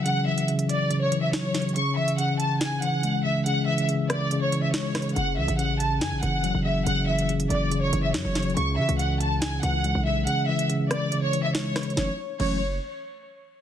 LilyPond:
<<
  \new Staff \with { instrumentName = "Violin section" } { \time 4/4 \key fis \minor \tempo 4 = 141 fis''8 e''8 r8 d''8. cis''8 e''16 cis''4 | cis'''8 e''8 fis''8 a''8 gis''8 fis''4 e''8 | fis''8 e''8 r8 d''8. cis''8 e''16 cis''4 | fis''8 e''8 fis''8 a''8 gis''8 fis''4 e''8 |
fis''8 e''8 r8 d''8. cis''8 e''16 cis''4 | cis'''8 e''8 fis''8 a''8 gis''8 fis''4 e''8 | fis''8 e''8 r8 d''8. cis''8 e''16 cis''4 | cis''8 r8 cis''8 r2 r8 | }
  \new Staff \with { instrumentName = "Tine electric piano" } { \clef bass \time 4/4 \key fis \minor <cis e fis>8 e8 cis4 cis8 e8 fis8 cis8 | cis8 e8 cis4. e8 gis8 cis8 | cis8 e8 cis4 cis8 e8 gis8 cis8 | cis8 e8 cis4. e8 fis8 cis8 |
cis8 e8 cis4 cis8 e8 fis8 cis8 | cis8 e8 cis4. e8 gis8 cis8 | cis8 e8 cis4 cis8 e8 gis8 cis8 | <e fis a cis'>8 r8 <e fis a cis'>8 r2 r8 | }
  \new Staff \with { instrumentName = "808-style bass" } { \clef bass \time 4/4 \key fis \minor r1 | r1 | r1 | fis,,8 cis,16 a,,4~ a,,16 fis,16 a,,16 fis,,8. fis,,8. |
fis,,4. fis,,4 fis,,8 fis,16 fis,,8. | cis,8 cis16 cis,4.~ cis,16 cis,8. b,,8. | r1 | fis,,16 r8. fis,,4 r2 | }
  \new DrumStaff \with { instrumentName = "Drums" } \drummode { \time 4/4 hh8. hh16 hh16 hh16 hh8 hh8 hh8 \tuplet 3/2 { sn16 r16 r16 <hh hho sn>16 hh16 hh16 } | hh8. hh16 hh8 hh8 <hh sn>8 hh8 hh4 | hh8. hh16 hh8 <hh ss>8 hh8 hh8 \tuplet 3/2 { sn16 r16 r16 <hh hho ss sn>16 hh16 hh16 } | hh8. hh16 hh8 hh8 <hh sn>8 hh8 hh4 |
hh8. hh16 hh16 hh16 hh8 hh8 hh8 \tuplet 3/2 { sn16 r16 r16 <hh hho sn>16 hh16 hh16 } | hh8. hh16 hh8 hh8 <hh sn>8 hh8 hh4 | hh8. hh16 hh8 <hh ss>8 hh8 hh8 \tuplet 3/2 { sn16 r16 r16 <hh hho ss sn>16 hh16 hh16 } | sn4 cymc4 r4 r4 | }
>>